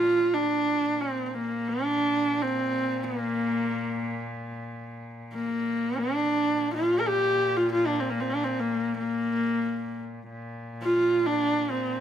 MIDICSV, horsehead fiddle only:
0, 0, Header, 1, 2, 480
1, 0, Start_track
1, 0, Tempo, 500000
1, 11523, End_track
2, 0, Start_track
2, 0, Title_t, "Horsehead fiddle"
2, 0, Program_c, 0, 110
2, 0, Note_on_c, 0, 65, 89
2, 320, Note_on_c, 0, 62, 84
2, 335, Note_off_c, 0, 65, 0
2, 970, Note_on_c, 0, 60, 72
2, 985, Note_off_c, 0, 62, 0
2, 1205, Note_off_c, 0, 60, 0
2, 1205, Note_on_c, 0, 60, 48
2, 1289, Note_on_c, 0, 58, 66
2, 1303, Note_off_c, 0, 60, 0
2, 1613, Note_on_c, 0, 62, 82
2, 1627, Note_off_c, 0, 58, 0
2, 2321, Note_on_c, 0, 60, 82
2, 2335, Note_off_c, 0, 62, 0
2, 2915, Note_on_c, 0, 58, 69
2, 2929, Note_off_c, 0, 60, 0
2, 4025, Note_off_c, 0, 58, 0
2, 5120, Note_on_c, 0, 58, 65
2, 5741, Note_on_c, 0, 62, 79
2, 5756, Note_off_c, 0, 58, 0
2, 6457, Note_off_c, 0, 62, 0
2, 6463, Note_on_c, 0, 65, 77
2, 6718, Note_on_c, 0, 70, 70
2, 6733, Note_off_c, 0, 65, 0
2, 6791, Note_on_c, 0, 67, 88
2, 6806, Note_off_c, 0, 70, 0
2, 7259, Note_on_c, 0, 65, 76
2, 7273, Note_off_c, 0, 67, 0
2, 7401, Note_off_c, 0, 65, 0
2, 7407, Note_on_c, 0, 65, 81
2, 7546, Note_on_c, 0, 62, 74
2, 7560, Note_off_c, 0, 65, 0
2, 7674, Note_on_c, 0, 60, 66
2, 7689, Note_off_c, 0, 62, 0
2, 7769, Note_on_c, 0, 58, 69
2, 7783, Note_off_c, 0, 60, 0
2, 7869, Note_on_c, 0, 60, 68
2, 7884, Note_off_c, 0, 58, 0
2, 7965, Note_on_c, 0, 62, 71
2, 7979, Note_off_c, 0, 60, 0
2, 8100, Note_on_c, 0, 60, 65
2, 8114, Note_off_c, 0, 62, 0
2, 8248, Note_on_c, 0, 58, 69
2, 8263, Note_off_c, 0, 60, 0
2, 8611, Note_off_c, 0, 58, 0
2, 8616, Note_on_c, 0, 58, 68
2, 9603, Note_off_c, 0, 58, 0
2, 10392, Note_on_c, 0, 65, 85
2, 10810, Note_on_c, 0, 62, 87
2, 10824, Note_off_c, 0, 65, 0
2, 11232, Note_on_c, 0, 60, 75
2, 11247, Note_off_c, 0, 62, 0
2, 11523, Note_off_c, 0, 60, 0
2, 11523, End_track
0, 0, End_of_file